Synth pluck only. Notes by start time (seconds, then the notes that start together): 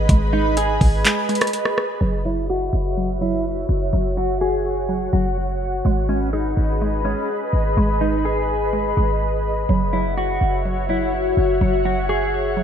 0.10 G#3
0.33 G#3
0.57 G#4
1.05 G#3
1.29 G#3
2.01 F#3
2.25 F#3
2.50 F#4
2.97 F#3
3.21 F#3
3.93 F#3
4.17 F#3
4.41 F#4
4.89 F#3
5.13 F#3
5.86 G#3
6.09 G#3
6.33 G#4
6.82 G#3
7.05 G#3
7.78 G#3
8.01 G#3
8.25 G#4
8.73 G#3
8.97 G#3
9.69 F#3
9.93 F#3
10.17 F#4
10.65 F#3
10.89 F#3
11.61 F#3
11.85 F#3
12.09 F#4
12.57 F#3